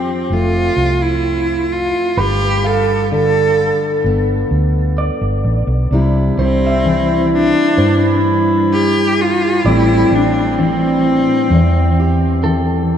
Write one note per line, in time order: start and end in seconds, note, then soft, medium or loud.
0.00 2.12 F2 medium
0.00 2.13 F3 medium
0.00 0.34 C4 medium
0.00 0.43 G4 medium
0.30 0.69 F1 medium
0.30 2.13 A3 medium
0.30 1.04 F4 medium
0.76 1.92 C2 medium
1.02 1.74 E4 medium
1.72 2.21 F4 medium
2.17 3.71 G1 medium
2.17 5.86 G2 medium
2.17 2.68 G4 medium
2.17 3.23 B4 medium
2.64 3.12 A4 medium
2.64 3.70 F5 medium
3.12 6.85 D3 medium
3.12 4.02 A4 medium
4.04 4.43 G1 medium
4.04 5.87 B3 medium
4.51 5.09 D2 medium
4.98 6.04 D5 soft
5.21 5.43 G1 medium
5.44 5.66 A1 medium
5.67 5.89 B1 medium
5.91 6.30 C2 medium
5.91 6.85 C3 medium
5.91 6.38 G3 medium
5.91 9.60 D4 medium
5.91 9.68 E4 loud
5.91 8.26 E4 medium
6.37 7.53 C2 medium
6.37 9.66 G3 medium
6.37 7.29 C4 medium
6.37 7.44 C5 medium
6.67 7.70 E5 soft
6.85 8.72 E3 medium
7.34 8.22 D4 loud
7.78 9.31 G2 medium
7.78 9.59 G2 medium
7.78 8.84 C5 medium
8.73 9.23 G4 loud
9.21 9.70 F4 medium
9.64 10.03 A1 medium
9.64 11.51 A2 medium
9.64 10.12 G3 medium
9.64 12.98 C4 loud
9.64 12.98 C4 medium
9.64 10.16 E4 medium
9.64 10.70 D5 medium
10.11 11.25 A1 medium
10.11 12.98 G3 medium
10.11 10.62 D4 medium
10.59 12.43 E3 medium
10.59 12.45 C4 medium
11.50 12.98 E2 medium
12.00 12.98 G4 medium
12.44 12.98 E3 medium
12.44 12.98 A4 medium